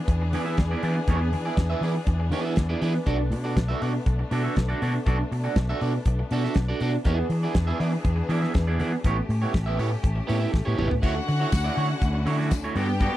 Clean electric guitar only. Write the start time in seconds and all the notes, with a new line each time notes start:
0.09 muted clean electric guitar stroke
0.22 muted clean electric guitar stroke
0.33 B3 E4 G#4 D5
0.45 B3 E4 G#4 E5
0.59 muted clean electric guitar stroke
0.71 B3 E4 G#4 D5
0.83 B3 E4 G#4 D5
0.96 muted clean electric guitar stroke
1.08 B3 E4 G#4 D5
1.21 muted clean electric guitar stroke
1.33 muted clean electric guitar stroke
1.45 B3 E4 G#4 D5
1.58 muted clean electric guitar stroke
1.70 B3 E4 G#4 E5
1.83 B3 E4 G#4 D5
1.95 muted clean electric guitar stroke
2.07 muted clean electric guitar stroke
2.20 muted clean electric guitar stroke
2.31 B3 E4 G#4 D5
2.44 B3 E4 G#4 E5
2.57 muted clean electric guitar stroke
2.69 B3 E4 G#4 D5
2.81 B3 E4 G#4 D5
2.94 muted clean electric guitar stroke
3.06 D4 F#4 A4 D5
3.18 muted clean electric guitar stroke
3.32 muted clean electric guitar stroke
3.44 D4 F#4 A4 D5
3.56 muted clean electric guitar stroke
3.68 D4 F#4 A4 E5
3.82 D4 F#4 A4 D5
3.93 muted clean electric guitar stroke
4.06 muted clean electric guitar stroke
4.19 muted clean electric guitar stroke
4.31 D4 F#4 A4 D5
4.44 D4 F#4 A4 E5
4.57 muted clean electric guitar stroke
4.69 D4 F#4 A4 D5
4.82 D4 F#4 A4 D5
4.94 muted clean electric guitar stroke
5.06 D4 F#4 A4 D5
5.19 muted clean electric guitar stroke
5.32 muted clean electric guitar stroke
5.44 D4 F#4 A4 D5
5.57 muted clean electric guitar stroke
5.69 D4 F#4 A4 E5
5.81 D4 F#4 A4 D5
5.94 muted clean electric guitar stroke
6.07 muted clean electric guitar stroke
6.19 muted clean electric guitar stroke
6.32 D4 F#4 A4 D5
6.44 D4 F#4 A4 E5
6.56 muted clean electric guitar stroke
6.68 D4 F#4 A4 D5
6.81 D4 F#4 A4 D5
6.94 muted clean electric guitar stroke
7.05 B3 E4 G#4 D5
7.18 muted clean electric guitar stroke
7.31 muted clean electric guitar stroke
7.43 B3 E4 G#4 D5
7.55 muted clean electric guitar stroke
7.67 B3 E4 G#4 E5
7.79 B3 E4 G#4 D5
7.92 muted clean electric guitar stroke
8.04 muted clean electric guitar stroke
8.16 muted clean electric guitar stroke
8.29 B3 E4 G#4 D5
8.42 B3 E4 G#4 E5
8.54 muted clean electric guitar stroke
8.67 B3 E4 G#4 D5
8.79 B3 E4 G#4 D5
8.93 muted clean electric guitar stroke
9.05 B3 E4 G4 C#5
9.18 muted clean electric guitar stroke
9.30 muted clean electric guitar stroke
9.42 B3 E4 G4 C#5
9.66 B3 E4 G4 E5
9.78 B3 E4 G4 C#5
9.91 muted clean electric guitar stroke
10.03 muted clean electric guitar stroke
10.16 muted clean electric guitar stroke
10.27 B3 E4 G4 C#5
10.40 B3 E4 G4 E5
10.52 muted clean electric guitar stroke
10.65 B3 E4 G4 C#5
10.78 B3 E4 G4 C#5
10.90 muted clean electric guitar stroke
11.02 A3 E4 F#4 C#5
11.15 muted clean electric guitar stroke
11.28 muted clean electric guitar stroke
11.40 A3 E4 F#4 C#5
11.52 muted clean electric guitar stroke
11.64 A3 E4 F#4 D5
11.76 A3 E4 F#4 C#5
11.90 muted clean electric guitar stroke
12.02 muted clean electric guitar stroke
12.14 muted clean electric guitar stroke
12.26 A3 E4 F#4 C#5
12.38 A3 E4 F#4 D5
12.51 muted clean electric guitar stroke
12.64 A3 E4 F#4 C#5
12.76 B3 F#4 A4 D5
12.88 muted clean electric guitar stroke
13.00 B3 F#4 A4 D5
13.13 muted clean electric guitar stroke